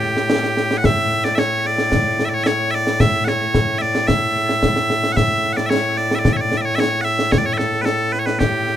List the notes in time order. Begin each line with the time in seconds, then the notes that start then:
Already playing: A2 G4
0.03 snare
0.17 snare
0.30 snare
0.43 snare
0.57 snare
0.71 snare
0.78 F#5
0.84 E5, concert bass drum, snare
1.11 snare
1.24 D5, snare
1.35 C#5 E5, snare
1.65 D5, snare
1.78 snare
1.92 concert bass drum, snare
2.19 snare
2.25 E5
2.29 D5
2.34 C#5
2.44 C#5 E5, snare
2.71 D5 E5, snare
2.87 snare
3.00 E5, concert bass drum, snare
3.14 snare
3.25 C#5 F#5, snare
3.41 snare
3.55 concert bass drum, snare
3.78 D5 E5, snare
3.95 snare
4.07 E5, concert bass drum, snare
4.36 snare
4.49 snare
4.63 concert bass drum, snare
4.76 snare
4.90 snare
5.04 snare
5.12 F#5
5.17 E5, concert bass drum, snare
5.44 snare
5.53 D5 F#5
5.57 snare
5.66 C#5 E5
5.71 snare
5.97 D5, snare
6.11 E5, snare
6.19 D5
6.25 concert bass drum, snare
6.33 C#5 E5
6.41 D5
6.52 snare
6.57 E5
6.61 C#5 D5
6.75 E5, snare
6.80 C#5
7.01 E5 F#5
7.06 snare
7.19 snare
7.32 C#5, concert bass drum, snare
7.38 D5
7.46 C#5, snare
7.53 E5
7.58 A4, snare
7.73 snare
7.82 A4 B4
7.86 snare
8.12 B4, snare
8.19 C#5
8.26 B4, snare
8.39 G4, concert bass drum, snare
8.67 snare